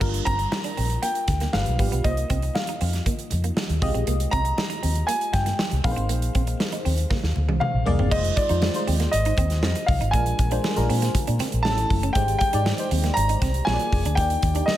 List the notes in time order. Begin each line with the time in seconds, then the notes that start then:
0.00 G1 G3 A#3 D4 F4 A#4, kick, crash, muted conga
0.14 closed hi-hat
0.25 G1 C4 A#5, kick, closed hi-hat, muted conga
0.39 muted clean electric guitar stroke, closed hi-hat
0.52 muted clean electric guitar stroke, snare, high conga
0.64 D4, closed hi-hat
0.77 A#1 C4, open hi-hat
0.90 closed hi-hat
1.02 A#3 G5, closed hi-hat, muted conga
1.15 closed hi-hat
1.28 D2, muted clean electric guitar stroke, kick, snare, closed hi-hat, muted conga, low conga
1.40 A#3, snare, closed hi-hat
1.53 G1 G3 D4 F4 B4 F5, muted clean electric guitar stroke, snare, high conga
1.66 B1, closed hi-hat
1.79 G#1 G3 B3 D4 F4 G4, kick, open hi-hat, high conga
1.92 B1 B3, closed hi-hat
2.04 C2 A#3 D#4 F4 C5 D#5, kick, closed hi-hat
2.11 D#5
2.17 closed hi-hat
2.30 C2 C4, kick, closed hi-hat, muted conga
2.42 muted clean electric guitar stroke, closed hi-hat
2.55 F5, muted clean electric guitar stroke, snare, high conga
2.67 D#4, closed hi-hat
2.81 F2 C4, open hi-hat
2.93 snare, closed hi-hat
3.06 A#3, kick, closed hi-hat, muted conga, low conga
3.19 closed hi-hat
3.30 F2, muted clean electric guitar stroke, closed hi-hat, muted conga, low conga
3.44 A#3, closed hi-hat
3.57 muted clean electric guitar stroke, snare, high conga
3.70 D#2, closed hi-hat
3.81 G#3 C4 F4 G4 D#5, kick, open hi-hat, high conga
3.95 A#1 C4, closed hi-hat
4.07 C2 A#3, closed hi-hat, muted conga
4.20 closed hi-hat
4.31 C2 C4 A#5, kick, closed hi-hat, muted conga
4.45 muted clean electric guitar stroke, closed hi-hat
4.57 muted clean electric guitar stroke, snare, high conga
4.70 D#4, closed hi-hat
4.83 D#2 C4, open hi-hat
4.95 closed hi-hat
5.07 A#3 G#5, closed hi-hat, muted conga
5.21 closed hi-hat
5.33 G2 G5, muted clean electric guitar stroke, kick, snare, closed hi-hat, muted conga, low conga
5.46 A#3, snare, closed hi-hat
5.59 muted clean electric guitar stroke, snare, high conga
5.71 C2, closed hi-hat
5.84 A#1 A#3 C4 D#4 G#4 B4 F5, kick, open hi-hat, high conga
5.91 C5
5.96 G#1 C4, closed hi-hat
6.09 A#1 A#3, closed hi-hat
6.22 closed hi-hat
6.35 A#1 C4, kick, closed hi-hat, muted conga
6.47 muted clean electric guitar stroke, closed hi-hat
6.60 muted clean electric guitar stroke, snare, high conga
6.72 D#4, closed hi-hat
6.85 D#2 C4, open hi-hat
6.98 closed hi-hat
7.10 A#3, kick, snare, muted conga, low conga
7.24 D#2, snare
7.36 D2, muted clean electric guitar stroke, muted conga, low conga
7.48 C2 G#3, high tom
7.60 F5, muted clean electric guitar stroke, mid tom, high conga
7.74 A#1
7.85 C2 A#3 D#4 G#4 D5, floor tom, high conga
7.99 G1 C4, floor tom
8.11 F1 G#3 D#4 F4 C5 D#5, kick, crash, muted conga
8.24 closed hi-hat
8.36 D5, muted clean electric guitar stroke, kick, closed hi-hat, muted conga
8.49 F2 G#3 D#4 F4 C5, closed hi-hat
8.62 muted clean electric guitar stroke, snare, high conga
8.74 G#3 D#4 F4 C5, closed hi-hat
8.87 D#2 C4, open hi-hat
9.00 A#3, snare, closed hi-hat
9.11 G#1 D#5, muted clean electric guitar stroke, closed hi-hat, muted conga
9.25 D#4, closed hi-hat
9.37 D#2 C4, kick, closed hi-hat, muted conga
9.50 snare, closed hi-hat
9.63 F2 C4, snare, high conga
9.75 muted clean electric guitar stroke, closed hi-hat
9.86 C2 F5, kick, open hi-hat, high conga
10.01 G#1 D#4, closed hi-hat
10.11 A#1 G#3 A#3 D4 F4 A#4 G#5, kick, closed hi-hat
10.26 closed hi-hat
10.39 A#1, muted clean electric guitar stroke, kick, closed hi-hat, muted conga
10.51 G#3 D4 F4 C5, closed hi-hat
10.64 muted clean electric guitar stroke, snare, high conga
10.76 A#1 G#3 D4 F4 A#4, closed hi-hat
10.89 A#2 C4, open hi-hat
11.02 A#3, snare, closed hi-hat
11.15 muted clean electric guitar stroke, muted fingered electric bass stroke, kick, closed hi-hat, muted conga, low conga
11.27 A#2 D4, closed hi-hat
11.39 C4, snare, closed hi-hat, muted conga, low conga
11.52 A#1, closed hi-hat
11.63 A1 A3 C4 C#4 E4 G#4 A5, snare, high conga
11.71 A4
11.78 muted clean electric guitar stroke, closed hi-hat
11.90 F#1, kick, open hi-hat, high conga
12.03 C#4, closed hi-hat
12.13 G#1 G#3 D#4 G4 C5 G5, kick, closed hi-hat, muted conga
12.28 closed hi-hat
12.39 G5, muted clean electric guitar stroke, kick, closed hi-hat, muted conga
12.53 G#2 G#3 D#4 G4 D5, closed hi-hat
12.65 muted clean electric guitar stroke, snare, high conga
12.78 G#3 D#4 G4 C5, closed hi-hat
12.91 D#2 C4, open hi-hat
13.04 A#3, snare, closed hi-hat
13.14 G#1 A#5, muted clean electric guitar stroke, closed hi-hat, muted conga
13.29 D#4, closed hi-hat
13.42 C2 C4, kick, snare, closed hi-hat, muted conga
13.54 closed hi-hat
13.65 A#1 A#3 C4 F4 G#4 C#5 G#5, snare, high conga
13.74 D5
13.79 muted clean electric guitar stroke, closed hi-hat
13.92 F1, kick, open hi-hat, high conga
14.05 D2 D4, closed hi-hat
14.15 D#2 A#3 D#4 G4 D5 G5, kick, closed hi-hat, muted conga
14.30 closed hi-hat
14.43 D#2, muted clean electric guitar stroke, kick, closed hi-hat, muted conga
14.54 A#3 D4 D#4 G4 D5, closed hi-hat
14.66 D#5, muted clean electric guitar stroke, snare, high conga